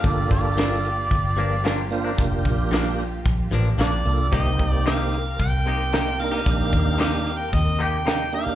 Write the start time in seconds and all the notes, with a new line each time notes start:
Already playing: A#3 F4 G4
0.03 G1 A#3 D4 F4 A4 D5, kick, closed hi-hat
0.31 G1 D5, kick, closed hi-hat
0.57 G2 F3 A#3 D4, snare, closed hi-hat
0.85 closed hi-hat
1.11 G1, kick, closed hi-hat
1.37 G2 F3 A#3 D4, closed hi-hat
1.64 G2 F3 A#3 D4, snare, closed hi-hat
1.91 A#3 D4 F4 C5, closed hi-hat
2.04 F3 A#3 D4
2.17 F1 A#3 D4 F4 G4, kick, closed hi-hat
2.45 A#1, kick, closed hi-hat
2.71 G2 F3 A#3 D4, snare, closed hi-hat
2.99 closed hi-hat
3.26 A#1, kick, closed hi-hat
3.51 A1 G2 F3 A#3 D4, closed hi-hat
3.78 A#1 G2 F3 A#3 D4 D5, snare, closed hi-hat
4.05 C2 A#3 D4 F4 A4, closed hi-hat
4.32 C2 C3 A#3 C4 D#4 G4 A#4 D#5, kick, closed hi-hat
4.59 C2, kick, closed hi-hat
4.70 D5
4.86 C3 A#3 D#4 G4 F5, snare, closed hi-hat
5.13 closed hi-hat
5.39 C2 G5, kick, closed hi-hat
5.66 C3 A#3 D#4 G4, closed hi-hat
5.92 C3 A#3 D#4 G4, snare, closed hi-hat
6.19 A#3 D4 D#4 A#4 F5, closed hi-hat
6.31 A#3 D#4 G4
6.46 A#1 A#3 D4 D#4 G4, kick, closed hi-hat
6.73 D#2, kick, closed hi-hat
6.98 C3 A#3 D#4 G4 F5, snare, closed hi-hat
7.26 closed hi-hat
7.37 G5
7.53 D#2 D#5, kick, closed hi-hat
7.79 C3 A#3 D#4 G4 G5, closed hi-hat
8.06 C3 A#3 D#4 G4, snare, closed hi-hat
8.32 A#3 D4 D#4 G4 F5, closed hi-hat
8.46 muted fingered electric bass stroke